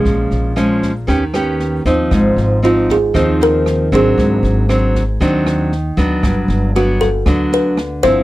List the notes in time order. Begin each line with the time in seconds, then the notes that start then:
Already playing: F3 G#3 C#4 G#4
0.05 A#1 A#2, kick, snare
0.31 A#1, snare
0.56 F3 G#3 C#4, cross-stick, snare
0.82 kick, snare
1.07 D#2 D#3 B3 C#4 G4, kick, snare
1.34 B3 C#4 G4, cross-stick, snare
1.59 snare
1.85 D#2 F3 C4 D#4, kick, snare
2.11 G#1 G#2, kick, cross-stick, snare
2.36 G#1, snare
2.63 F3 C4 D#4 F4, snare
2.89 G#4, kick, snare
3.14 D#2 D#3 F3 C4 D#4, kick, cross-stick, snare
3.40 A#4, snare
3.66 cross-stick, snare
3.92 G#1 F#3 C4 D4 G#4, kick, snare
4.18 G#1 G#2, kick, snare
4.43 G#1, snare
4.69 F#3 C4 D4, cross-stick, snare
4.95 kick, snare
5.20 D#2 D#3 F#3 C4 D4, kick, snare
5.46 cross-stick, snare
5.72 snare
5.97 D2 F#3 B3 D4, kick, snare
6.23 G1 G2, kick, cross-stick, snare
6.48 G1, snare
6.75 F#3 B3 D4 F#4, snare
7.00 A4, kick, snare
7.26 D2 D3 F#3 B3 D4, kick, cross-stick, snare
7.52 B4, snare
7.77 cross-stick, snare
8.03 G1 F3 C4 E4 C5, kick, snare